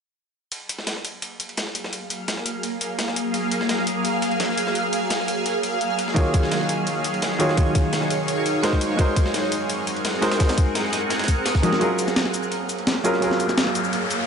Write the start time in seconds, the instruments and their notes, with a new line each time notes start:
0.52 ambient pad F#3 A#3 G#4 F5, closed hi-hat, ride
0.69 closed hi-hat, ride
0.79 snare
0.87 snare, closed hi-hat, ride
0.96 snare
1.05 closed hi-hat, ride
1.22 closed hi-hat, ride
1.40 closed hi-hat, ride
1.49 ride
1.57 snare, closed hi-hat, ride
1.67 snare
1.75 closed hi-hat, ride
1.84 snare
1.93 closed hi-hat, ride
2.10 closed hi-hat, ride
2.28 snare, closed hi-hat, ride
2.37 snare
2.46 closed hi-hat, ride
2.63 closed hi-hat, ride
2.81 closed hi-hat, ride
2.99 snare, closed hi-hat, ride
3.08 snare
3.16 closed hi-hat, ride
3.34 closed hi-hat, ride
3.52 closed hi-hat, ride
3.61 snare
3.69 snare, closed hi-hat, ride
3.78 snare
3.87 closed hi-hat, ride
4.05 closed hi-hat, ride
4.22 closed hi-hat, ride
4.31 ride
4.40 snare, closed hi-hat, ride
4.49 snare
4.58 closed hi-hat, ride
4.67 snare
4.75 closed hi-hat, ride
4.93 closed hi-hat, ride
5.10 snare, closed hi-hat, ride
5.20 snare
5.28 closed hi-hat, ride
5.46 closed hi-hat, ride
5.63 closed hi-hat, ride
5.81 closed hi-hat
5.99 ambient pad D#4 C#5, closed hi-hat, ride
6.08 snare
6.14 grand piano D#3 A#3 F4 F#4 G#4 C#5, kick, closed hi-hat, ride
6.34 kick, closed hi-hat, ride
6.43 snare
6.51 snare, closed hi-hat, ride
6.61 snare
6.69 closed hi-hat, ride
6.87 closed hi-hat, ride
7.04 closed hi-hat, ride
7.14 ride
7.22 snare, closed hi-hat, ride
7.32 snare
7.39 grand piano D#3 A#3 F4 F#4 G#4 C#5, closed hi-hat, ride
7.49 snare
7.56 grand piano D#3 A#3 F4 F#4 G#4 C#5, kick, closed hi-hat, ride
7.75 kick, closed hi-hat, ride
7.93 snare, closed hi-hat, ride
8.02 snare
8.10 closed hi-hat, ride
8.28 closed hi-hat, ride
8.46 closed hi-hat, ride
8.62 grand piano G#3 D#4 F#4 A#4 C5, snare, closed hi-hat, ride
8.73 kick, snare
8.81 ambient pad C4 G#4 A#4 F#5, closed hi-hat, ride
8.97 grand piano G#3 D#4 F#4 A#4 C5, kick, closed hi-hat, ride
9.16 kick, closed hi-hat, ride
9.26 snare
9.34 snare, closed hi-hat, ride
9.43 snare
9.52 closed hi-hat, ride
9.70 closed hi-hat, ride
9.87 closed hi-hat, ride
9.96 ride
10.05 snare, closed hi-hat, ride
10.14 snare
10.21 grand piano G#3 D#4 F#4 A#4 C5, snare, closed hi-hat, ride
10.31 snare, ride
10.38 grand piano G#3 D#4 F#4 A#4 C5, kick, snare, closed hi-hat, ride
10.49 snare, ride
10.58 kick, closed hi-hat, ride
10.75 snare, closed hi-hat, ride
10.84 snare
10.93 snare, closed hi-hat, ride
11.10 snare, closed hi-hat, ride
11.19 snare, ride
11.24 snare, ride
11.28 kick, closed hi-hat, ride
11.46 snare, closed hi-hat, ride
11.55 kick, snare
11.62 grand piano G#3 D#4 F#4 A#4 D#5, closed hi-hat, high tom, ride
11.73 snare
11.79 grand piano F#3 C#4 F4 G#4 A#4, ambient pad F#3 A#3 G#4 F5, closed hi-hat, ride, riser
11.99 closed hi-hat, ride, shaker
12.08 snare, shaker
12.16 snare, closed hi-hat, ride
12.25 snare
12.34 closed hi-hat, ride, shaker
12.43 shaker
12.52 closed hi-hat, ride
12.69 closed hi-hat, ride, shaker
12.78 ride
12.87 snare, closed hi-hat, ride
12.96 snare
13.04 grand piano F#3 C#4 F4 G#4 A#4, closed hi-hat, ride, shaker
13.14 snare
13.20 grand piano F#3 C#4 F4 G#4 A#4, closed hi-hat, ride
13.31 snare
13.40 closed hi-hat, ride, shaker
13.49 snare, shaker
13.58 snare, closed hi-hat, ride
13.67 snare
13.75 closed hi-hat, ride, shaker
13.84 shaker
13.93 closed hi-hat, ride
14.10 closed hi-hat, ride, shaker